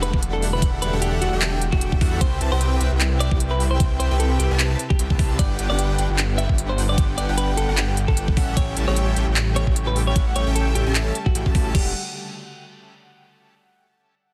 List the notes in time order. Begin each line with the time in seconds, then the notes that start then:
Already playing: E1 D3 G3 A3 D4 G4 A4 E5 F#5
0.03 B4, closed hi-hat
0.14 E1 D4 G4 A4 E5 F#5, kick
0.23 closed hi-hat
0.33 A4
0.42 open hi-hat
0.53 B4
0.62 E1 D4 G4 A4 E5 F#5, kick, closed hi-hat, ride
0.82 E1 D4 G4 A4 B4 E5 F#5, closed hi-hat
0.93 E1 D4 G4 A4 E5 F#5
1.02 G4, closed hi-hat
1.21 E1 D4 F#4 G4 A4 E5 F#5, closed hi-hat
1.33 E1 D4 G4 A4 E5 G5
1.42 clap, closed hi-hat
1.62 closed hi-hat
1.72 E1 D4 F#4 G4 A4 E5 G5, kick
1.81 closed hi-hat
1.92 kick
2.01 E2 D4 G4 A4 E5 F#5, kick, open hi-hat
2.21 C2 C3 C4 E4 G4 B4 C5 E5 G5, kick, closed hi-hat, ride
2.41 C2 C4 G4 B4 E5 A5, closed hi-hat
2.52 C2 C4 G4 B4 C5 E5 G5
2.61 closed hi-hat
2.81 C2 C4 G4 B4 E5 G5, closed hi-hat
2.92 C2 C4 G4 B4 E5 G5
3.01 clap, closed hi-hat
3.20 D5, closed hi-hat
3.31 C2 C4 G4 B4 E5 G5, kick
3.40 closed hi-hat
3.51 B4
3.60 open hi-hat
3.71 C5
3.80 C2 C4 G4 B4 E5 G5, kick, closed hi-hat, ride
4.00 C2 C4 G4 B4 C5 E5 G5, closed hi-hat
4.11 C2 C4 G4 B4 E5 G5
4.19 A4, closed hi-hat
4.39 C2 C4 G4 B4 E5 G5, closed hi-hat
4.51 C2 C4 G4 B4 E5 A5
4.59 clap, closed hi-hat
4.79 closed hi-hat
4.90 G4, kick
4.99 C2 C4 G4 B4 E5 G5, closed hi-hat
5.10 C2 C4 G4 B4 E5 A5, kick
5.19 kick, open hi-hat
5.39 G1 G3 B3 D4 G4 B4 D5 F#5 G5, kick, closed hi-hat, ride
5.59 G1 D4 G4 B4 F#5 G5, closed hi-hat
5.70 G1 D4 G4 B4 D5 F#5 G5
5.79 closed hi-hat
5.99 G1 D4 G4 B4 F#5 G5, closed hi-hat
6.09 G1 D4 G4 B4 F#5 G5
6.18 clap, closed hi-hat
6.38 E5, closed hi-hat
6.49 G1 D4 G4 B4 F#5 G5, kick
6.58 closed hi-hat
6.69 C5
6.78 open hi-hat
6.89 D5
6.98 G1 D4 G4 B4 F#5 G5, kick, closed hi-hat, ride
7.18 G1 D4 G4 B4 D5 F#5 G5, closed hi-hat
7.29 G1 D4 G4 B4 F#5 G5
7.38 B4, closed hi-hat
7.57 G1 D4 G4 A4 B4 F#5 G5, closed hi-hat
7.68 G1 D4 G4 B4 F#5 G5
7.77 clap, closed hi-hat
7.97 closed hi-hat
8.08 G1 D4 G4 A4 B4 F#5 G5, kick
8.17 closed hi-hat
8.28 kick
8.37 A1 C#3 A3 C#4 G4 A4 E5 F#5, kick, open hi-hat
8.57 A1 C#4 G4 A4 C#5 E5 G5, kick, closed hi-hat, ride
8.77 A1 C#4 G4 A4 E5 A5, closed hi-hat
8.88 A1 C#4 G4 A4 C#5 E5 G5
8.96 closed hi-hat
9.16 A1 C#4 G4 A4 E5 G5, closed hi-hat
9.27 A1 C#4 G4 A4 E5 G5
9.36 clap, closed hi-hat
9.56 C#5, closed hi-hat
9.67 A1 C#4 G4 A4 E5 G5, kick
9.76 closed hi-hat
9.87 B4
9.96 open hi-hat
10.07 C#5
10.16 A1 C#4 G4 A4 E5 F#5, kick, closed hi-hat, ride
10.36 A1 C#4 G4 A4 C#5 E5 G5, closed hi-hat
10.47 A1 C#4 G4 A4 E5 G5
10.55 A4, closed hi-hat
10.75 A1 C#4 G4 A4 E5 G5, closed hi-hat
10.86 A1 C#4 G4 A4 E5 A5
10.95 clap, closed hi-hat
11.15 closed hi-hat
11.26 F#4, kick
11.35 A1 C#4 G4 A4 E5 G5, closed hi-hat
11.46 A1 C#4 G4 A4 E5 A5, kick
11.55 kick, open hi-hat
11.75 E1 D3 G3 A3 D4 F#4 G4 A4 E5 F#5, kick, crash